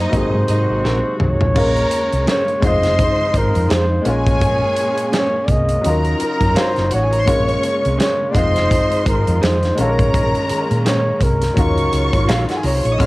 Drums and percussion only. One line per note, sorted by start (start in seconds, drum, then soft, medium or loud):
0.13 kick medium
0.13 closed hi-hat medium
0.48 closed hi-hat medium
0.85 snare medium
1.20 mid tom medium
1.41 floor tom medium
1.56 kick loud
1.56 crash loud
1.76 closed hi-hat soft
1.91 closed hi-hat medium
2.12 closed hi-hat soft
2.27 snare medium
2.27 closed hi-hat medium
2.48 closed hi-hat soft
2.62 kick loud
2.62 closed hi-hat medium
2.83 snare soft
2.83 closed hi-hat soft
2.99 kick loud
2.99 closed hi-hat medium
3.34 kick medium
3.34 closed hi-hat medium
3.55 closed hi-hat soft
3.70 snare loud
3.70 closed hi-hat medium
4.05 closed hi-hat medium
4.26 kick loud
4.26 closed hi-hat soft
4.41 kick loud
4.41 closed hi-hat medium
4.76 closed hi-hat medium
4.98 closed hi-hat soft
5.13 snare loud
5.13 closed hi-hat medium
5.48 kick medium
5.48 closed hi-hat medium
5.69 closed hi-hat medium
5.85 closed hi-hat medium
6.05 closed hi-hat soft
6.20 closed hi-hat medium
6.41 kick medium
6.41 closed hi-hat soft
6.56 snare loud
6.56 closed hi-hat medium
6.76 snare soft
6.76 closed hi-hat soft
6.91 closed hi-hat medium
7.13 closed hi-hat medium
7.28 kick loud
7.28 closed hi-hat medium
7.49 closed hi-hat soft
7.63 closed hi-hat medium
7.85 closed hi-hat soft
8.00 snare medium
8.00 closed hi-hat medium
8.35 kick medium
8.35 closed hi-hat medium
8.56 snare soft
8.56 closed hi-hat medium
8.71 kick loud
8.71 closed hi-hat medium
8.92 closed hi-hat soft
9.06 kick loud
9.06 closed hi-hat medium
9.27 closed hi-hat soft
9.43 snare loud
9.43 closed hi-hat medium
9.63 snare soft
9.63 closed hi-hat soft
9.78 closed hi-hat medium
9.99 kick medium
9.99 closed hi-hat soft
10.14 kick loud
10.14 closed hi-hat medium
10.35 closed hi-hat soft
10.49 closed hi-hat medium
10.71 closed hi-hat soft
10.86 snare medium
10.86 closed hi-hat medium
11.21 kick medium
11.21 closed hi-hat medium
11.42 snare soft
11.42 closed hi-hat medium
11.57 kick loud
11.57 closed hi-hat medium
11.78 closed hi-hat soft
11.93 closed hi-hat medium
12.13 kick medium
12.13 closed hi-hat soft
12.29 snare loud
12.29 closed hi-hat medium
12.49 snare soft
12.49 closed hi-hat soft
12.63 open hi-hat medium
12.85 closed hi-hat soft
13.00 kick loud
13.00 closed hi-hat medium